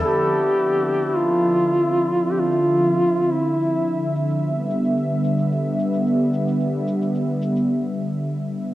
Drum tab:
SH |x-xxx-xxx-xxx-xx|x-xxx-xxx-xxx-xx|x-xxx-xxx-xxx-xx|x-xxx-xx--------|